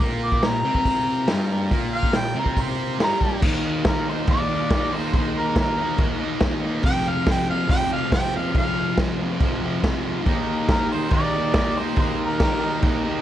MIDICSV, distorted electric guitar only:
0, 0, Header, 1, 2, 480
1, 0, Start_track
1, 0, Tempo, 427350
1, 9, Time_signature, 4, 2, 24, 8
1, 14844, End_track
2, 0, Start_track
2, 0, Title_t, "Distorted electric guitar"
2, 0, Program_c, 0, 30
2, 12, Note_on_c, 0, 46, 90
2, 18, Note_on_c, 0, 58, 101
2, 474, Note_off_c, 0, 46, 0
2, 487, Note_off_c, 0, 58, 0
2, 487, Note_on_c, 0, 46, 77
2, 680, Note_off_c, 0, 46, 0
2, 731, Note_on_c, 0, 48, 96
2, 739, Note_on_c, 0, 60, 107
2, 1443, Note_off_c, 0, 48, 0
2, 1444, Note_on_c, 0, 43, 94
2, 1448, Note_off_c, 0, 60, 0
2, 1450, Note_on_c, 0, 55, 93
2, 1920, Note_off_c, 0, 43, 0
2, 1921, Note_on_c, 0, 46, 91
2, 1923, Note_off_c, 0, 55, 0
2, 1936, Note_on_c, 0, 58, 92
2, 2389, Note_off_c, 0, 46, 0
2, 2403, Note_on_c, 0, 46, 76
2, 2406, Note_off_c, 0, 58, 0
2, 2599, Note_off_c, 0, 46, 0
2, 2639, Note_on_c, 0, 48, 92
2, 2651, Note_on_c, 0, 60, 100
2, 3357, Note_off_c, 0, 48, 0
2, 3358, Note_on_c, 0, 43, 83
2, 3363, Note_off_c, 0, 60, 0
2, 3373, Note_on_c, 0, 55, 97
2, 3829, Note_on_c, 0, 51, 96
2, 3837, Note_off_c, 0, 43, 0
2, 3844, Note_off_c, 0, 55, 0
2, 3867, Note_on_c, 0, 58, 92
2, 3887, Note_on_c, 0, 63, 95
2, 4571, Note_off_c, 0, 63, 0
2, 4575, Note_on_c, 0, 63, 82
2, 4631, Note_off_c, 0, 58, 0
2, 4635, Note_on_c, 0, 58, 61
2, 4799, Note_off_c, 0, 51, 0
2, 4803, Note_on_c, 0, 51, 95
2, 4828, Note_off_c, 0, 58, 0
2, 4841, Note_on_c, 0, 58, 99
2, 4854, Note_off_c, 0, 63, 0
2, 4868, Note_on_c, 0, 63, 107
2, 5048, Note_off_c, 0, 63, 0
2, 5061, Note_on_c, 0, 63, 75
2, 5109, Note_off_c, 0, 58, 0
2, 5123, Note_on_c, 0, 58, 66
2, 5281, Note_off_c, 0, 51, 0
2, 5294, Note_on_c, 0, 51, 69
2, 5313, Note_off_c, 0, 58, 0
2, 5326, Note_on_c, 0, 58, 85
2, 5339, Note_off_c, 0, 63, 0
2, 5352, Note_on_c, 0, 63, 88
2, 5519, Note_off_c, 0, 63, 0
2, 5532, Note_on_c, 0, 63, 82
2, 5577, Note_off_c, 0, 58, 0
2, 5590, Note_on_c, 0, 58, 66
2, 5759, Note_off_c, 0, 51, 0
2, 5772, Note_on_c, 0, 51, 90
2, 5796, Note_off_c, 0, 58, 0
2, 5810, Note_on_c, 0, 58, 101
2, 5818, Note_off_c, 0, 63, 0
2, 5831, Note_on_c, 0, 63, 107
2, 6471, Note_off_c, 0, 63, 0
2, 6484, Note_on_c, 0, 63, 84
2, 6527, Note_off_c, 0, 58, 0
2, 6541, Note_on_c, 0, 58, 66
2, 6697, Note_off_c, 0, 51, 0
2, 6710, Note_on_c, 0, 51, 93
2, 6732, Note_off_c, 0, 58, 0
2, 6746, Note_on_c, 0, 58, 111
2, 6756, Note_off_c, 0, 63, 0
2, 6769, Note_on_c, 0, 63, 109
2, 6950, Note_off_c, 0, 63, 0
2, 6963, Note_on_c, 0, 63, 86
2, 7006, Note_off_c, 0, 58, 0
2, 7020, Note_on_c, 0, 58, 69
2, 7188, Note_off_c, 0, 51, 0
2, 7202, Note_on_c, 0, 51, 78
2, 7211, Note_off_c, 0, 58, 0
2, 7224, Note_on_c, 0, 58, 78
2, 7239, Note_off_c, 0, 63, 0
2, 7253, Note_on_c, 0, 63, 85
2, 7403, Note_off_c, 0, 63, 0
2, 7417, Note_on_c, 0, 63, 90
2, 7458, Note_off_c, 0, 58, 0
2, 7471, Note_on_c, 0, 58, 68
2, 7655, Note_off_c, 0, 63, 0
2, 7665, Note_on_c, 0, 41, 88
2, 7668, Note_off_c, 0, 51, 0
2, 7683, Note_off_c, 0, 58, 0
2, 7695, Note_on_c, 0, 48, 105
2, 7717, Note_on_c, 0, 53, 96
2, 8385, Note_off_c, 0, 53, 0
2, 8389, Note_on_c, 0, 53, 68
2, 8425, Note_off_c, 0, 48, 0
2, 8439, Note_on_c, 0, 48, 66
2, 8618, Note_off_c, 0, 41, 0
2, 8622, Note_on_c, 0, 41, 106
2, 8635, Note_off_c, 0, 48, 0
2, 8648, Note_on_c, 0, 48, 108
2, 8660, Note_off_c, 0, 53, 0
2, 8674, Note_on_c, 0, 53, 113
2, 8840, Note_off_c, 0, 53, 0
2, 8854, Note_on_c, 0, 53, 82
2, 8891, Note_off_c, 0, 48, 0
2, 8905, Note_on_c, 0, 48, 64
2, 9086, Note_off_c, 0, 41, 0
2, 9100, Note_on_c, 0, 41, 75
2, 9122, Note_off_c, 0, 48, 0
2, 9135, Note_on_c, 0, 48, 80
2, 9145, Note_off_c, 0, 53, 0
2, 9159, Note_on_c, 0, 53, 82
2, 9334, Note_off_c, 0, 53, 0
2, 9348, Note_on_c, 0, 53, 76
2, 9382, Note_off_c, 0, 48, 0
2, 9396, Note_on_c, 0, 48, 61
2, 9560, Note_off_c, 0, 41, 0
2, 9574, Note_on_c, 0, 41, 86
2, 9591, Note_off_c, 0, 48, 0
2, 9604, Note_on_c, 0, 48, 97
2, 9618, Note_off_c, 0, 53, 0
2, 9632, Note_on_c, 0, 53, 105
2, 10296, Note_off_c, 0, 53, 0
2, 10309, Note_on_c, 0, 53, 74
2, 10354, Note_off_c, 0, 48, 0
2, 10367, Note_on_c, 0, 48, 64
2, 10545, Note_off_c, 0, 41, 0
2, 10559, Note_on_c, 0, 41, 92
2, 10567, Note_off_c, 0, 48, 0
2, 10580, Note_on_c, 0, 48, 114
2, 10593, Note_off_c, 0, 53, 0
2, 10606, Note_on_c, 0, 53, 109
2, 10786, Note_off_c, 0, 53, 0
2, 10799, Note_on_c, 0, 53, 81
2, 10835, Note_off_c, 0, 48, 0
2, 10848, Note_on_c, 0, 48, 70
2, 11005, Note_off_c, 0, 41, 0
2, 11018, Note_on_c, 0, 41, 79
2, 11039, Note_off_c, 0, 48, 0
2, 11053, Note_on_c, 0, 48, 83
2, 11060, Note_off_c, 0, 53, 0
2, 11073, Note_on_c, 0, 53, 80
2, 11253, Note_off_c, 0, 53, 0
2, 11266, Note_on_c, 0, 53, 77
2, 11303, Note_off_c, 0, 48, 0
2, 11316, Note_on_c, 0, 48, 56
2, 11496, Note_off_c, 0, 48, 0
2, 11497, Note_off_c, 0, 41, 0
2, 11501, Note_off_c, 0, 53, 0
2, 11501, Note_on_c, 0, 51, 82
2, 11536, Note_on_c, 0, 58, 99
2, 11564, Note_on_c, 0, 63, 104
2, 12228, Note_off_c, 0, 63, 0
2, 12232, Note_on_c, 0, 63, 71
2, 12284, Note_off_c, 0, 58, 0
2, 12289, Note_on_c, 0, 58, 64
2, 12465, Note_off_c, 0, 51, 0
2, 12470, Note_on_c, 0, 51, 100
2, 12483, Note_off_c, 0, 58, 0
2, 12496, Note_on_c, 0, 58, 104
2, 12520, Note_off_c, 0, 63, 0
2, 12533, Note_on_c, 0, 63, 102
2, 12710, Note_off_c, 0, 63, 0
2, 12724, Note_on_c, 0, 63, 80
2, 12768, Note_off_c, 0, 58, 0
2, 12781, Note_on_c, 0, 58, 66
2, 12950, Note_off_c, 0, 51, 0
2, 12963, Note_on_c, 0, 51, 78
2, 12975, Note_off_c, 0, 58, 0
2, 12988, Note_on_c, 0, 58, 82
2, 13006, Note_off_c, 0, 63, 0
2, 13019, Note_on_c, 0, 63, 82
2, 13189, Note_off_c, 0, 63, 0
2, 13202, Note_on_c, 0, 63, 81
2, 13246, Note_off_c, 0, 58, 0
2, 13259, Note_on_c, 0, 58, 64
2, 13412, Note_off_c, 0, 51, 0
2, 13425, Note_on_c, 0, 51, 89
2, 13438, Note_off_c, 0, 58, 0
2, 13451, Note_on_c, 0, 58, 96
2, 13468, Note_off_c, 0, 63, 0
2, 13481, Note_on_c, 0, 63, 98
2, 14143, Note_off_c, 0, 63, 0
2, 14157, Note_on_c, 0, 63, 69
2, 14200, Note_off_c, 0, 58, 0
2, 14214, Note_on_c, 0, 58, 60
2, 14388, Note_off_c, 0, 51, 0
2, 14402, Note_on_c, 0, 51, 102
2, 14418, Note_off_c, 0, 58, 0
2, 14431, Note_on_c, 0, 58, 112
2, 14443, Note_off_c, 0, 63, 0
2, 14456, Note_on_c, 0, 63, 104
2, 14635, Note_off_c, 0, 63, 0
2, 14649, Note_on_c, 0, 63, 80
2, 14685, Note_off_c, 0, 58, 0
2, 14698, Note_on_c, 0, 58, 69
2, 14844, Note_off_c, 0, 51, 0
2, 14844, Note_off_c, 0, 58, 0
2, 14844, Note_off_c, 0, 63, 0
2, 14844, End_track
0, 0, End_of_file